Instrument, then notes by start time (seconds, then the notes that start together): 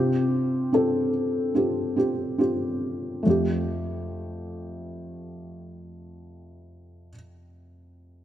felt piano
Already playing: C3 C4 F4 G4
0.73 C4 F4 A4
1.55 C4 F4 G4
1.96 C4 F4 G4
2.38 C4 F4 G4
3.23 F2 A3 F4
3.30 G4